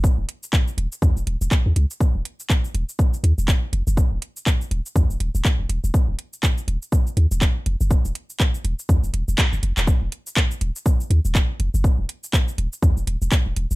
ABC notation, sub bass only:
X:1
M:4/4
L:1/16
Q:"Swing 16ths" 1/4=122
K:Ebm
V:1 name="Sub bass" clef=bass
z E,,, z4 E,,, z E,, E,,, E,,, E,,, z E,, D,, z | z E,,, z4 E,,, z3 E,, E,,, z2 F,,, G,,, | z E,,, z4 E,,, z E,, E,,, E,,, E,,, z E,,, E,,, E,,, | z E,,, z4 E,,, z3 E,, E,,, z2 F,,, G,,, |
z E,,, z4 E,,, z E,, E,,, E,,, E,,, z G,,, F,,, E,,, | z E,,, z4 E,,, z3 E,, E,,, z2 F,,, G,,, | z E,,, z4 E,,, z E,, E,,, E,,, E,,, z E,,, E,,, E,,, |]